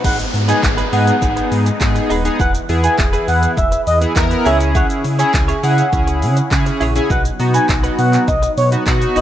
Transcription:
0.04 sub bass G#1, analog synth pad G#3 B3 D#4, clean electric guitar D#4 G#4 B4, analog synth lead F#5, kick, crash, downlifter, shaker
0.19 muted clean electric guitar stroke, closed hi-hat, shaker
0.33 sub bass G#2, muted clean electric guitar stroke, open hi-hat, shaker
0.48 analog polysynth B3 D#4 G#4, clean electric guitar D#4 G#4 B4, analog synth lead G#5, closed hi-hat, shaker
0.63 sub bass G#1, muted clean electric guitar stroke, kick, clap, shaker
0.77 clean electric guitar D#4 G#4 B4, closed hi-hat, shaker
0.92 sub bass G#2, analog polysynth B3 D#4 G#4, analog synth lead F#5, muted clean electric guitar stroke, open hi-hat, shaker
1.07 muted clean electric guitar stroke, closed hi-hat, shaker
1.22 sub bass G#1, analog polysynth B3 D#4 G#4, muted clean electric guitar stroke, kick, shaker
1.36 muted clean electric guitar stroke, closed hi-hat, shaker
1.52 sub bass G#2, open hi-hat, shaker
1.66 muted clean electric guitar stroke, closed hi-hat, shaker
1.81 sub bass G#2, analog polysynth B3 D#4 G#4, muted clean electric guitar stroke, kick, clap, shaker
1.95 muted clean electric guitar stroke, closed hi-hat, shaker
2.10 sub bass D#1, clean electric guitar D#4 G#4 B4, open hi-hat, shaker
2.25 analog polysynth B3 D#4 G#4, muted clean electric guitar stroke, closed hi-hat, shaker
2.39 sub bass E1, analog synth pad E3 E4 G#4 B4, clean electric guitar E4 G#4 B4, analog synth lead F#5, kick, shaker
2.54 muted clean electric guitar stroke, closed hi-hat, shaker
2.69 sub bass E2, analog polysynth B3 E4 G#4, muted clean electric guitar stroke, open hi-hat, shaker
2.83 clean electric guitar E4 G#4 B4, analog synth lead G#5, closed hi-hat, shaker
2.98 sub bass E1, muted clean electric guitar stroke, kick, clap, shaker
3.13 clean electric guitar E4 G#4 B4, closed hi-hat, shaker
3.28 sub bass E2, analog synth lead F#5, muted clean electric guitar stroke, open hi-hat, shaker
3.42 muted clean electric guitar stroke, closed hi-hat, shaker
3.57 sub bass E1, analog synth lead E5, muted clean electric guitar stroke, kick, shaker
3.72 muted clean electric guitar stroke, closed hi-hat, shaker
3.87 sub bass E2, analog synth lead D#5, open hi-hat, shaker
4.01 analog polysynth B3 E4 G#4, muted clean electric guitar stroke, closed hi-hat, shaker
4.16 sub bass E2, analog polysynth B3 E4 A#4, kick, clap, shaker
4.31 muted clean electric guitar stroke, closed hi-hat, shaker
4.45 sub bass C#2, analog synth pad C#3 C#4, analog polysynth C#4 E4 G#4, clean electric guitar E4 G#4 C#5, analog synth lead E5, open hi-hat, shaker
4.60 muted clean electric guitar stroke, closed hi-hat, shaker
4.75 clean electric guitar E4 G#4 C#5, analog synth lead F#5, kick, shaker
4.90 muted clean electric guitar stroke, closed hi-hat, shaker
5.04 sub bass C#3, muted clean electric guitar stroke, open hi-hat, shaker
5.19 analog polysynth C#4 E4 G#4, clean electric guitar E4 G#4 C#5, analog synth lead G#5, closed hi-hat, shaker
5.34 sub bass C#2, muted clean electric guitar stroke, kick, clap, shaker
5.48 clean electric guitar E4 G#4 C#5, closed hi-hat, shaker
5.63 sub bass C#3, analog polysynth C#4 E4 G#4, analog synth lead F#5, muted clean electric guitar stroke, open hi-hat, shaker
5.78 muted clean electric guitar stroke, closed hi-hat, shaker
5.92 sub bass C#2, analog polysynth C#4 E4 G#4, muted clean electric guitar stroke, kick, shaker
6.07 muted clean electric guitar stroke, closed hi-hat, shaker
6.22 sub bass C#3, open hi-hat, shaker
6.37 muted clean electric guitar stroke, closed hi-hat, shaker
6.51 sub bass C#3, analog polysynth C#4 E4 G#4, kick, clap, shaker
6.66 muted clean electric guitar stroke, closed hi-hat, shaker
6.80 sub bass A#1, clean electric guitar E4 G#4 C#5, open hi-hat, shaker
6.95 analog polysynth C#4 E4 G#4, muted clean electric guitar stroke, closed hi-hat, shaker
7.10 sub bass B1, analog synth pad F#3 B3 D#4, clean electric guitar D#4 F#4 B4, analog synth lead F#5, kick, shaker
7.25 muted clean electric guitar stroke, closed hi-hat, shaker
7.39 sub bass B2, analog polysynth B3 D#4 F#4, muted clean electric guitar stroke, open hi-hat, shaker
7.54 clean electric guitar D#4 F#4 B4, analog synth lead G#5, closed hi-hat, shaker
7.69 sub bass B1, kick, clap, shaker
7.83 clean electric guitar D#4 F#4 B4, closed hi-hat, shaker
7.98 sub bass B2, analog synth lead F#5, muted clean electric guitar stroke, open hi-hat, shaker
8.13 muted clean electric guitar stroke, clap, closed hi-hat, shaker
8.28 sub bass B1, analog synth lead D#5, muted clean electric guitar stroke, kick, shaker
8.42 muted clean electric guitar stroke, closed hi-hat, shaker
8.57 sub bass B2, analog synth lead C#5, open hi-hat, shaker
8.72 analog polysynth B3 D#4 F#4, muted clean electric guitar stroke, closed hi-hat, shaker
8.86 sub bass B2, analog polysynth B3 D#4 F#4, kick, clap, shaker
9.01 muted clean electric guitar stroke, closed hi-hat, shaker
9.16 sub bass F#1, clean electric guitar D#4 F#4 B4, analog synth lead D#5, open hi-hat, shaker

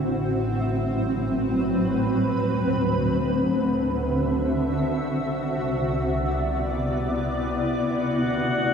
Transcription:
Already playing: double bass section A1, ambient pad A2 F#3 C4 E4 F#4
0.38 ambient pad B4
2.47 double bass section D2, ambient pad D3
3.41 ambient pad E5
3.55 ambient pad F#4
5.16 double bass section C2, ambient pad C3
5.47 ambient pad D5
5.70 ambient pad B3 E4
7.86 double bass section D2, ambient pad D3, synth texture F#4 F#5

